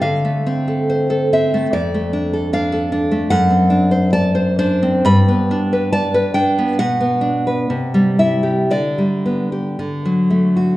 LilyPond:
\new Staff \with { instrumentName = "Nylon-string guitar" } { \time 2/4 \key d \dorian \tempo 4 = 70 << { f''4. e''8 | d''4 f''4 | \key g \major fis''4 a''8 c''8 | b''4 a''8 g''8 |
fis''4. e''8 | d''4 r4 | } \\ { d16 a16 c'16 a'16 c''16 a'16 c'16 a16 | f,16 a16 d'16 a'16 d'16 a'16 d'16 a16 | fis,16 c'16 d'16 c''16 d''16 c''16 d'16 c'16 | g,16 b16 d'16 b'16 d''16 b'16 d'16 b16 |
b,16 b16 d'16 b'16 c16 g16 e'16 g'16 | d16 g16 b16 g'16 d16 fis16 a16 fis'16 | } >> }